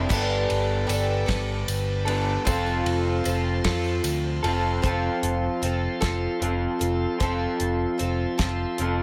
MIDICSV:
0, 0, Header, 1, 6, 480
1, 0, Start_track
1, 0, Tempo, 790514
1, 61, Time_signature, 6, 3, 24, 8
1, 5482, End_track
2, 0, Start_track
2, 0, Title_t, "Tonewheel organ"
2, 0, Program_c, 0, 16
2, 0, Note_on_c, 0, 74, 57
2, 59, Note_on_c, 0, 79, 58
2, 60, Note_on_c, 0, 83, 73
2, 61, Note_on_c, 0, 69, 64
2, 1467, Note_off_c, 0, 74, 0
2, 1479, Note_off_c, 0, 79, 0
2, 1480, Note_off_c, 0, 83, 0
2, 1495, Note_on_c, 0, 72, 60
2, 1495, Note_on_c, 0, 77, 63
2, 1496, Note_on_c, 0, 84, 65
2, 2908, Note_off_c, 0, 69, 0
2, 2918, Note_off_c, 0, 72, 0
2, 2918, Note_off_c, 0, 77, 0
2, 2919, Note_off_c, 0, 84, 0
2, 2932, Note_on_c, 0, 72, 52
2, 2935, Note_on_c, 0, 69, 61
2, 2936, Note_on_c, 0, 77, 58
2, 2937, Note_on_c, 0, 84, 63
2, 4362, Note_off_c, 0, 77, 0
2, 4364, Note_on_c, 0, 76, 55
2, 5482, Note_off_c, 0, 69, 0
2, 5482, Note_off_c, 0, 72, 0
2, 5482, Note_off_c, 0, 76, 0
2, 5482, Note_off_c, 0, 84, 0
2, 5482, End_track
3, 0, Start_track
3, 0, Title_t, "Twelve-string acoustic guitar"
3, 0, Program_c, 1, 25
3, 55, Note_on_c, 1, 55, 96
3, 58, Note_on_c, 1, 59, 101
3, 64, Note_on_c, 1, 62, 91
3, 69, Note_on_c, 1, 69, 98
3, 519, Note_off_c, 1, 55, 0
3, 522, Note_off_c, 1, 59, 0
3, 526, Note_on_c, 1, 55, 62
3, 530, Note_on_c, 1, 59, 72
3, 532, Note_off_c, 1, 62, 0
3, 540, Note_on_c, 1, 62, 74
3, 542, Note_off_c, 1, 69, 0
3, 544, Note_on_c, 1, 69, 77
3, 759, Note_off_c, 1, 69, 0
3, 765, Note_off_c, 1, 62, 0
3, 766, Note_on_c, 1, 69, 72
3, 770, Note_off_c, 1, 59, 0
3, 771, Note_off_c, 1, 55, 0
3, 773, Note_on_c, 1, 62, 75
3, 777, Note_on_c, 1, 59, 67
3, 780, Note_on_c, 1, 55, 63
3, 1246, Note_off_c, 1, 69, 0
3, 1248, Note_on_c, 1, 69, 59
3, 1253, Note_off_c, 1, 62, 0
3, 1256, Note_off_c, 1, 59, 0
3, 1257, Note_off_c, 1, 55, 0
3, 1263, Note_on_c, 1, 62, 54
3, 1270, Note_on_c, 1, 59, 51
3, 1488, Note_on_c, 1, 53, 82
3, 1491, Note_off_c, 1, 69, 0
3, 1494, Note_off_c, 1, 59, 0
3, 1496, Note_on_c, 1, 60, 94
3, 1497, Note_off_c, 1, 62, 0
3, 1500, Note_on_c, 1, 65, 86
3, 1504, Note_on_c, 1, 69, 102
3, 1960, Note_off_c, 1, 53, 0
3, 1967, Note_on_c, 1, 53, 63
3, 1969, Note_off_c, 1, 60, 0
3, 1974, Note_off_c, 1, 65, 0
3, 1976, Note_on_c, 1, 60, 66
3, 1978, Note_off_c, 1, 69, 0
3, 1982, Note_on_c, 1, 65, 70
3, 1987, Note_on_c, 1, 69, 70
3, 2204, Note_off_c, 1, 69, 0
3, 2209, Note_off_c, 1, 65, 0
3, 2210, Note_off_c, 1, 53, 0
3, 2211, Note_on_c, 1, 69, 72
3, 2215, Note_off_c, 1, 60, 0
3, 2217, Note_on_c, 1, 65, 64
3, 2223, Note_on_c, 1, 60, 68
3, 2228, Note_on_c, 1, 53, 61
3, 2688, Note_off_c, 1, 69, 0
3, 2694, Note_off_c, 1, 65, 0
3, 2695, Note_on_c, 1, 69, 49
3, 2697, Note_off_c, 1, 60, 0
3, 2700, Note_off_c, 1, 53, 0
3, 2706, Note_on_c, 1, 65, 51
3, 2717, Note_on_c, 1, 60, 42
3, 2926, Note_off_c, 1, 60, 0
3, 2928, Note_on_c, 1, 53, 78
3, 2930, Note_off_c, 1, 65, 0
3, 2934, Note_off_c, 1, 69, 0
3, 2934, Note_on_c, 1, 60, 90
3, 2938, Note_on_c, 1, 65, 87
3, 2943, Note_on_c, 1, 69, 97
3, 3404, Note_off_c, 1, 53, 0
3, 3411, Note_off_c, 1, 60, 0
3, 3411, Note_on_c, 1, 53, 55
3, 3415, Note_off_c, 1, 65, 0
3, 3418, Note_off_c, 1, 69, 0
3, 3418, Note_on_c, 1, 60, 68
3, 3427, Note_on_c, 1, 65, 64
3, 3434, Note_on_c, 1, 69, 64
3, 3640, Note_off_c, 1, 69, 0
3, 3645, Note_off_c, 1, 65, 0
3, 3647, Note_on_c, 1, 69, 78
3, 3650, Note_off_c, 1, 60, 0
3, 3652, Note_off_c, 1, 53, 0
3, 3652, Note_on_c, 1, 65, 68
3, 3657, Note_on_c, 1, 60, 71
3, 3662, Note_on_c, 1, 53, 57
3, 4117, Note_off_c, 1, 69, 0
3, 4123, Note_off_c, 1, 65, 0
3, 4124, Note_on_c, 1, 69, 47
3, 4130, Note_on_c, 1, 65, 45
3, 4136, Note_off_c, 1, 60, 0
3, 4139, Note_off_c, 1, 53, 0
3, 4143, Note_on_c, 1, 60, 40
3, 4367, Note_off_c, 1, 60, 0
3, 4370, Note_off_c, 1, 69, 0
3, 4371, Note_on_c, 1, 53, 89
3, 4373, Note_off_c, 1, 65, 0
3, 4375, Note_on_c, 1, 60, 84
3, 4379, Note_on_c, 1, 65, 89
3, 4386, Note_on_c, 1, 69, 88
3, 4836, Note_off_c, 1, 53, 0
3, 4843, Note_off_c, 1, 60, 0
3, 4843, Note_on_c, 1, 53, 56
3, 4850, Note_on_c, 1, 60, 66
3, 4851, Note_off_c, 1, 65, 0
3, 4857, Note_off_c, 1, 69, 0
3, 4858, Note_on_c, 1, 65, 65
3, 4865, Note_on_c, 1, 69, 61
3, 5079, Note_off_c, 1, 69, 0
3, 5084, Note_off_c, 1, 60, 0
3, 5086, Note_off_c, 1, 65, 0
3, 5087, Note_on_c, 1, 69, 74
3, 5092, Note_off_c, 1, 53, 0
3, 5092, Note_on_c, 1, 60, 61
3, 5093, Note_on_c, 1, 65, 64
3, 5099, Note_on_c, 1, 53, 56
3, 5482, Note_off_c, 1, 53, 0
3, 5482, Note_off_c, 1, 60, 0
3, 5482, Note_off_c, 1, 65, 0
3, 5482, Note_off_c, 1, 69, 0
3, 5482, End_track
4, 0, Start_track
4, 0, Title_t, "Clean electric guitar"
4, 0, Program_c, 2, 27
4, 1266, Note_on_c, 2, 55, 70
4, 1482, Note_off_c, 2, 55, 0
4, 2708, Note_on_c, 2, 53, 64
4, 2920, Note_off_c, 2, 53, 0
4, 3886, Note_on_c, 2, 53, 68
4, 3896, Note_on_c, 2, 60, 68
4, 3900, Note_on_c, 2, 65, 70
4, 3905, Note_on_c, 2, 69, 69
4, 4357, Note_off_c, 2, 53, 0
4, 4362, Note_off_c, 2, 60, 0
4, 4364, Note_off_c, 2, 65, 0
4, 4366, Note_off_c, 2, 69, 0
4, 5332, Note_on_c, 2, 53, 64
4, 5342, Note_on_c, 2, 60, 78
4, 5350, Note_on_c, 2, 65, 77
4, 5356, Note_on_c, 2, 69, 71
4, 5482, Note_off_c, 2, 53, 0
4, 5482, Note_off_c, 2, 60, 0
4, 5482, Note_off_c, 2, 65, 0
4, 5482, Note_off_c, 2, 69, 0
4, 5482, End_track
5, 0, Start_track
5, 0, Title_t, "Picked electric bass"
5, 0, Program_c, 3, 34
5, 62, Note_on_c, 3, 31, 96
5, 270, Note_off_c, 3, 31, 0
5, 305, Note_on_c, 3, 31, 84
5, 511, Note_off_c, 3, 31, 0
5, 535, Note_on_c, 3, 31, 78
5, 745, Note_off_c, 3, 31, 0
5, 780, Note_on_c, 3, 31, 95
5, 988, Note_off_c, 3, 31, 0
5, 1017, Note_on_c, 3, 31, 89
5, 1435, Note_off_c, 3, 31, 0
5, 1496, Note_on_c, 3, 29, 100
5, 1705, Note_off_c, 3, 29, 0
5, 1726, Note_on_c, 3, 29, 95
5, 1939, Note_off_c, 3, 29, 0
5, 1976, Note_on_c, 3, 29, 75
5, 2184, Note_off_c, 3, 29, 0
5, 2214, Note_on_c, 3, 41, 89
5, 2423, Note_off_c, 3, 41, 0
5, 2453, Note_on_c, 3, 38, 85
5, 2662, Note_off_c, 3, 38, 0
5, 2693, Note_on_c, 3, 29, 92
5, 2902, Note_off_c, 3, 29, 0
5, 2936, Note_on_c, 3, 29, 89
5, 3083, Note_off_c, 3, 29, 0
5, 3174, Note_on_c, 3, 29, 84
5, 3321, Note_off_c, 3, 29, 0
5, 3414, Note_on_c, 3, 29, 78
5, 3561, Note_off_c, 3, 29, 0
5, 3654, Note_on_c, 3, 29, 90
5, 3802, Note_off_c, 3, 29, 0
5, 3894, Note_on_c, 3, 29, 85
5, 4042, Note_off_c, 3, 29, 0
5, 4133, Note_on_c, 3, 29, 82
5, 4282, Note_off_c, 3, 29, 0
5, 4376, Note_on_c, 3, 29, 87
5, 4524, Note_off_c, 3, 29, 0
5, 4616, Note_on_c, 3, 29, 81
5, 4764, Note_off_c, 3, 29, 0
5, 4859, Note_on_c, 3, 29, 74
5, 5007, Note_off_c, 3, 29, 0
5, 5097, Note_on_c, 3, 29, 93
5, 5246, Note_off_c, 3, 29, 0
5, 5338, Note_on_c, 3, 29, 79
5, 5482, Note_off_c, 3, 29, 0
5, 5482, End_track
6, 0, Start_track
6, 0, Title_t, "Drums"
6, 62, Note_on_c, 9, 36, 111
6, 62, Note_on_c, 9, 49, 100
6, 68, Note_on_c, 9, 54, 95
6, 123, Note_off_c, 9, 36, 0
6, 123, Note_off_c, 9, 49, 0
6, 129, Note_off_c, 9, 54, 0
6, 303, Note_on_c, 9, 51, 69
6, 364, Note_off_c, 9, 51, 0
6, 542, Note_on_c, 9, 51, 70
6, 546, Note_on_c, 9, 54, 95
6, 603, Note_off_c, 9, 51, 0
6, 607, Note_off_c, 9, 54, 0
6, 780, Note_on_c, 9, 36, 85
6, 781, Note_on_c, 9, 51, 97
6, 783, Note_on_c, 9, 38, 109
6, 841, Note_off_c, 9, 36, 0
6, 842, Note_off_c, 9, 51, 0
6, 843, Note_off_c, 9, 38, 0
6, 1021, Note_on_c, 9, 51, 71
6, 1022, Note_on_c, 9, 54, 116
6, 1082, Note_off_c, 9, 51, 0
6, 1083, Note_off_c, 9, 54, 0
6, 1261, Note_on_c, 9, 51, 78
6, 1322, Note_off_c, 9, 51, 0
6, 1498, Note_on_c, 9, 36, 107
6, 1499, Note_on_c, 9, 51, 92
6, 1499, Note_on_c, 9, 54, 107
6, 1559, Note_off_c, 9, 36, 0
6, 1560, Note_off_c, 9, 51, 0
6, 1560, Note_off_c, 9, 54, 0
6, 1617, Note_on_c, 9, 54, 36
6, 1678, Note_off_c, 9, 54, 0
6, 1738, Note_on_c, 9, 51, 74
6, 1799, Note_off_c, 9, 51, 0
6, 1975, Note_on_c, 9, 54, 101
6, 1977, Note_on_c, 9, 51, 64
6, 2036, Note_off_c, 9, 54, 0
6, 2038, Note_off_c, 9, 51, 0
6, 2213, Note_on_c, 9, 51, 101
6, 2214, Note_on_c, 9, 38, 119
6, 2215, Note_on_c, 9, 36, 82
6, 2274, Note_off_c, 9, 51, 0
6, 2275, Note_off_c, 9, 38, 0
6, 2276, Note_off_c, 9, 36, 0
6, 2332, Note_on_c, 9, 54, 32
6, 2393, Note_off_c, 9, 54, 0
6, 2453, Note_on_c, 9, 54, 108
6, 2454, Note_on_c, 9, 51, 73
6, 2513, Note_off_c, 9, 54, 0
6, 2515, Note_off_c, 9, 51, 0
6, 2692, Note_on_c, 9, 54, 30
6, 2697, Note_on_c, 9, 51, 72
6, 2753, Note_off_c, 9, 54, 0
6, 2757, Note_off_c, 9, 51, 0
6, 2936, Note_on_c, 9, 36, 107
6, 2939, Note_on_c, 9, 42, 73
6, 2997, Note_off_c, 9, 36, 0
6, 3000, Note_off_c, 9, 42, 0
6, 3177, Note_on_c, 9, 42, 59
6, 3237, Note_off_c, 9, 42, 0
6, 3417, Note_on_c, 9, 42, 54
6, 3478, Note_off_c, 9, 42, 0
6, 3654, Note_on_c, 9, 42, 72
6, 3655, Note_on_c, 9, 36, 77
6, 3656, Note_on_c, 9, 38, 107
6, 3715, Note_off_c, 9, 42, 0
6, 3716, Note_off_c, 9, 36, 0
6, 3716, Note_off_c, 9, 38, 0
6, 3898, Note_on_c, 9, 42, 56
6, 3959, Note_off_c, 9, 42, 0
6, 4135, Note_on_c, 9, 42, 60
6, 4196, Note_off_c, 9, 42, 0
6, 4375, Note_on_c, 9, 36, 98
6, 4375, Note_on_c, 9, 42, 73
6, 4436, Note_off_c, 9, 36, 0
6, 4436, Note_off_c, 9, 42, 0
6, 4614, Note_on_c, 9, 42, 60
6, 4675, Note_off_c, 9, 42, 0
6, 4854, Note_on_c, 9, 42, 51
6, 4915, Note_off_c, 9, 42, 0
6, 5094, Note_on_c, 9, 42, 79
6, 5095, Note_on_c, 9, 36, 80
6, 5095, Note_on_c, 9, 38, 104
6, 5154, Note_off_c, 9, 42, 0
6, 5155, Note_off_c, 9, 38, 0
6, 5156, Note_off_c, 9, 36, 0
6, 5332, Note_on_c, 9, 42, 57
6, 5393, Note_off_c, 9, 42, 0
6, 5482, End_track
0, 0, End_of_file